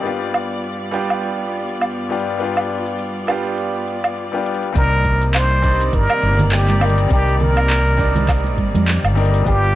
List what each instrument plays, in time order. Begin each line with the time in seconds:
Already playing: string section G3 D5
0.02 string section G2 B3 F4, grand piano G3 B3 D4 F4, closed hi-hat
0.07 grand piano G4
0.34 closed hi-hat, low woodblock
0.51 closed hi-hat
0.64 closed hi-hat
0.91 grand piano G3 B3 D4 F4 G4, closed hi-hat
1.10 closed hi-hat, low woodblock
1.23 closed hi-hat
1.52 closed hi-hat
1.69 closed hi-hat
1.81 closed hi-hat, low woodblock
2.09 grand piano G3 B3 D4 F4 G4, closed hi-hat
2.19 closed hi-hat
2.27 closed hi-hat
2.38 grand piano G3 B3 D4 F4, closed hi-hat
2.43 grand piano G4
2.57 low woodblock
2.70 closed hi-hat
2.86 closed hi-hat
2.99 closed hi-hat
3.27 grand piano G3 B3 D4 F4 G4, closed hi-hat, low woodblock
3.45 closed hi-hat
3.58 closed hi-hat
3.87 closed hi-hat
4.04 closed hi-hat, low woodblock
4.17 closed hi-hat
4.32 grand piano G3 B3 D4 F4 G4
4.46 closed hi-hat
4.55 closed hi-hat
4.63 closed hi-hat
4.73 fretless electric bass C2, string section C3 D#3 G3 A#3 D5, grand piano G3 C4 D4 D#4, kick, closed hi-hat, shaker
4.77 muted trumpet A#4, grand piano A#4
4.93 shaker
5.05 kick, closed hi-hat
5.22 closed hi-hat, shaker
5.34 muted trumpet C5, clap, closed hi-hat, low woodblock, shaker
5.51 shaker
5.62 grand piano G3 C4 D4 D#4 D5, kick, closed hi-hat
5.80 closed hi-hat, shaker
5.93 fretless electric bass G1, muted trumpet A#4, kick, closed hi-hat, shaker
6.10 low woodblock, shaker
6.23 fretless electric bass G1, closed hi-hat
6.39 closed hi-hat, low conga, shaker
6.52 muted trumpet G4, clap, closed hi-hat, shaker
6.68 clap, high conga, shaker
6.80 grand piano G3 C4 D4 D#4 A#4, closed hi-hat, low woodblock
6.90 closed hi-hat
6.98 closed hi-hat, shaker
7.08 fretless electric bass C2, grand piano G3 C4 D4 D#4, kick, closed hi-hat, shaker
7.12 muted trumpet G4, grand piano A#4
7.27 muted conga, shaker
7.40 muted trumpet A#4, closed hi-hat, low conga
7.57 closed hi-hat, low woodblock, shaker
7.70 clap, closed hi-hat, shaker
7.86 shaker
7.97 grand piano G3 C4 D4 D#4 D5, kick, closed hi-hat
8.15 closed hi-hat, high conga, low conga, shaker
8.28 kick, clap, closed hi-hat, low woodblock, shaker
8.44 muted conga, shaker
8.57 fretless electric bass G1, kick, closed hi-hat, high conga
8.74 fretless electric bass F2, closed hi-hat, high conga, shaker
8.88 clap, closed hi-hat, shaker
9.04 fretless electric bass G1, low woodblock, shaker
9.15 grand piano G3 C4 D4 D#4 A#4, closed hi-hat, muted conga
9.25 closed hi-hat
9.34 closed hi-hat, shaker
9.43 fretless electric bass G1, grand piano G3 B3 D4 F4, string section B3 F4, muted trumpet G4, kick, closed hi-hat, shaker
9.48 grand piano G4
9.63 shaker